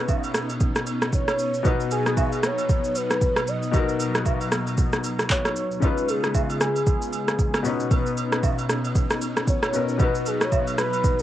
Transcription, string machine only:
0, 0, Header, 1, 2, 480
1, 0, Start_track
1, 0, Tempo, 521739
1, 1518, Time_signature, 4, 2, 24, 8
1, 10327, End_track
2, 0, Start_track
2, 0, Title_t, "String machine"
2, 0, Program_c, 0, 50
2, 0, Note_on_c, 0, 47, 76
2, 0, Note_on_c, 0, 59, 75
2, 0, Note_on_c, 0, 61, 70
2, 0, Note_on_c, 0, 63, 84
2, 1496, Note_off_c, 0, 61, 0
2, 1497, Note_off_c, 0, 63, 0
2, 1515, Note_on_c, 0, 54, 69
2, 1516, Note_on_c, 0, 63, 86
2, 5320, Note_off_c, 0, 54, 0
2, 5320, Note_off_c, 0, 63, 0
2, 5321, Note_off_c, 0, 59, 0
2, 5322, Note_off_c, 0, 47, 0
2, 5358, Note_on_c, 0, 59, 69
2, 5359, Note_on_c, 0, 49, 73
2, 5359, Note_on_c, 0, 56, 72
2, 5360, Note_on_c, 0, 65, 88
2, 7021, Note_off_c, 0, 59, 0
2, 7022, Note_off_c, 0, 49, 0
2, 7022, Note_off_c, 0, 56, 0
2, 7022, Note_off_c, 0, 65, 0
2, 7038, Note_on_c, 0, 47, 82
2, 7039, Note_on_c, 0, 59, 70
2, 7039, Note_on_c, 0, 63, 88
2, 7040, Note_on_c, 0, 61, 71
2, 9177, Note_off_c, 0, 47, 0
2, 9177, Note_off_c, 0, 61, 0
2, 9195, Note_on_c, 0, 47, 76
2, 9196, Note_on_c, 0, 54, 72
2, 10327, Note_off_c, 0, 47, 0
2, 10327, Note_off_c, 0, 54, 0
2, 10327, Note_off_c, 0, 59, 0
2, 10327, Note_off_c, 0, 63, 0
2, 10327, End_track
0, 0, End_of_file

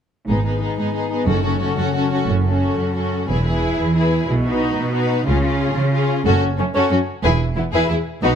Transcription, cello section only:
0, 0, Header, 1, 2, 480
1, 0, Start_track
1, 0, Tempo, 334262
1, 408, Time_signature, 6, 3, 24, 8
1, 5682, Tempo, 328587
1, 12102, End_track
2, 0, Start_track
2, 0, Title_t, "Cello section"
2, 0, Program_c, 0, 48
2, 399, Note_on_c, 0, 44, 40
2, 1005, Note_off_c, 0, 44, 0
2, 1125, Note_on_c, 0, 44, 38
2, 1719, Note_off_c, 0, 44, 0
2, 1828, Note_on_c, 0, 42, 46
2, 2429, Note_off_c, 0, 42, 0
2, 2549, Note_on_c, 0, 42, 53
2, 3166, Note_off_c, 0, 42, 0
2, 3278, Note_on_c, 0, 42, 40
2, 3920, Note_off_c, 0, 42, 0
2, 3995, Note_on_c, 0, 42, 37
2, 4639, Note_off_c, 0, 42, 0
2, 4732, Note_on_c, 0, 40, 39
2, 5361, Note_off_c, 0, 40, 0
2, 5459, Note_on_c, 0, 40, 43
2, 6089, Note_off_c, 0, 40, 0
2, 6167, Note_on_c, 0, 47, 45
2, 6800, Note_off_c, 0, 47, 0
2, 6890, Note_on_c, 0, 47, 44
2, 7518, Note_off_c, 0, 47, 0
2, 7602, Note_on_c, 0, 49, 53
2, 8239, Note_off_c, 0, 49, 0
2, 8328, Note_on_c, 0, 49, 48
2, 8961, Note_off_c, 0, 49, 0
2, 9046, Note_on_c, 0, 42, 57
2, 9141, Note_off_c, 0, 42, 0
2, 9530, Note_on_c, 0, 42, 43
2, 9624, Note_off_c, 0, 42, 0
2, 9754, Note_on_c, 0, 42, 56
2, 9851, Note_off_c, 0, 42, 0
2, 10000, Note_on_c, 0, 42, 44
2, 10095, Note_off_c, 0, 42, 0
2, 10476, Note_on_c, 0, 40, 55
2, 10571, Note_off_c, 0, 40, 0
2, 10943, Note_on_c, 0, 40, 38
2, 11042, Note_off_c, 0, 40, 0
2, 11191, Note_on_c, 0, 40, 58
2, 11289, Note_off_c, 0, 40, 0
2, 11437, Note_on_c, 0, 40, 38
2, 11534, Note_off_c, 0, 40, 0
2, 11911, Note_on_c, 0, 47, 48
2, 12010, Note_off_c, 0, 47, 0
2, 12102, End_track
0, 0, End_of_file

